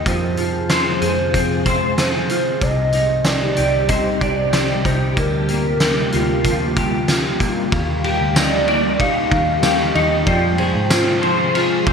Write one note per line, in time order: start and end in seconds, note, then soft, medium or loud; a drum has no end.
0.00 0.12 A#3 medium
0.00 0.12 D#4 soft
0.00 0.12 G4 medium
0.06 0.98 F2 medium
0.06 2.59 C3 medium
0.06 2.59 F3 medium
0.06 2.61 F3 medium
0.06 2.59 G#3 medium
0.06 2.59 F4 medium
0.06 2.59 G#4 medium
0.06 1.94 C5 loud
0.06 kick medium
0.06 closed hi-hat medium
0.37 2.29 F4 medium
0.37 closed hi-hat soft
0.69 1.65 C5 medium
0.69 snare loud
0.69 closed hi-hat medium
1.02 1.32 F2 loud
1.02 1.97 G#4 medium
1.02 closed hi-hat soft
1.34 2.26 F2 medium
1.34 3.88 C4 medium
1.34 kick medium
1.34 closed hi-hat medium
1.66 4.21 C5 medium
1.66 kick medium
1.66 closed hi-hat soft
1.98 2.68 G#4 medium
1.98 2.63 C5 loud
1.98 snare medium
1.98 closed hi-hat medium
2.29 2.68 F4 soft
2.29 closed hi-hat soft
2.60 3.53 C2 medium
2.60 7.68 C3 medium
2.60 5.17 C3 medium
2.60 7.68 G3 medium
2.60 5.14 C4 medium
2.60 5.14 D#4 medium
2.60 7.68 G4 medium
2.60 3.26 D#5 loud
2.60 kick medium
2.60 closed hi-hat medium
2.92 4.84 D#4 soft
2.92 closed hi-hat soft
3.24 3.90 D5 loud
3.24 snare loud
3.24 closed hi-hat medium
3.56 4.18 C2 medium
3.56 4.52 G4 medium
3.56 closed hi-hat soft
3.89 5.23 C4 medium
3.89 4.23 D#5 loud
3.89 kick medium
3.89 closed hi-hat medium
4.21 4.82 C2 medium
4.21 7.71 D5 medium
4.21 4.87 D5 medium
4.21 kick medium
4.21 closed hi-hat soft
4.53 5.81 G4 medium
4.53 snare medium
4.53 closed hi-hat medium
4.85 5.16 C2 medium
4.85 5.23 D#4 soft
4.85 5.17 C5 medium
4.85 kick medium
4.85 closed hi-hat soft
5.17 6.09 D2 medium
5.17 8.39 D3 medium
5.17 7.69 A#3 medium
5.17 7.70 F4 medium
5.17 7.36 A#4 medium
5.17 kick loud
5.17 closed hi-hat medium
5.49 7.40 A#3 medium
5.49 closed hi-hat soft
5.80 6.76 G4 medium
5.80 snare loud
5.80 closed hi-hat medium
6.12 6.44 D2 medium
6.12 7.08 F4 medium
6.12 closed hi-hat soft
6.44 7.36 D2 medium
6.44 7.79 F3 medium
6.44 kick medium
6.44 closed hi-hat medium
6.76 8.04 G4 medium
6.76 kick medium
6.76 closed hi-hat soft
7.08 7.79 F4 soft
7.08 snare medium
7.08 closed hi-hat medium
7.40 10.62 A#3 soft
7.40 kick medium
7.40 closed hi-hat soft
7.72 8.18 D#2 medium
7.72 10.25 G3 medium
7.72 10.25 A#3 medium
7.72 10.25 D#4 medium
7.72 10.25 G4 medium
7.72 8.62 F5 medium
7.72 kick loud
7.72 ride medium
8.04 9.62 G4 medium
8.04 ride soft
8.21 9.28 D2 medium
8.36 8.98 D#4 medium
8.36 9.02 D5 medium
8.36 snare loud
8.36 ride medium
8.36 tambourine medium
8.68 9.32 D5 medium
8.68 ride soft
8.99 9.94 D#4 medium
8.99 9.96 F5 loud
8.99 kick medium
8.99 ride medium
9.32 9.92 D#2 loud
9.32 kick medium
9.32 ride soft
9.63 10.34 G4 medium
9.63 snare loud
9.63 ride medium
9.63 tambourine medium
9.95 10.26 D#2 medium
9.95 10.34 D#4 medium
9.95 10.28 D#5 loud
9.95 ride soft
10.25 10.73 F2 loud
10.25 11.93 C3 medium
10.25 11.93 F3 medium
10.25 11.93 G#3 medium
10.25 11.93 F4 medium
10.25 11.93 G#4 medium
10.25 10.61 D5 loud
10.25 11.17 G5 medium
10.25 kick medium
10.25 ride soft
10.58 11.93 G#4 medium
10.58 11.87 C5 medium
10.58 ride soft
10.75 11.83 G#2 medium
10.90 11.53 F4 medium
10.90 snare loud
10.90 ride soft
10.90 tambourine medium
11.22 11.86 C5 medium
11.22 ride soft
11.54 11.93 F4 medium
11.54 ride medium
11.87 11.93 F2 medium
11.87 11.93 C5 medium
11.87 kick loud
11.87 ride soft